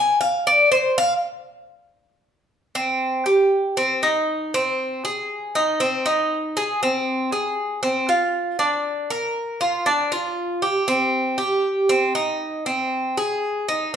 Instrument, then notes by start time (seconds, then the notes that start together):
cuban tres
Already playing: G#5
0.21 F5
0.47 D5
0.72 C5
0.98 F5
2.75 C4
3.26 G4
3.77 C4
4.03 D#4
4.54 C4
5.05 G#4
5.55 D#4
5.80 C4
6.06 D#4
6.57 G#4
6.83 C4
7.32 G#4
7.83 C4
8.09 F4
8.59 D4
9.10 A#4
9.61 F4
9.86 D4
10.12 F4
10.62 G4
10.88 C4
11.38 G4
11.89 C4
12.15 D#4
12.66 C4
13.17 G#4
13.69 D#4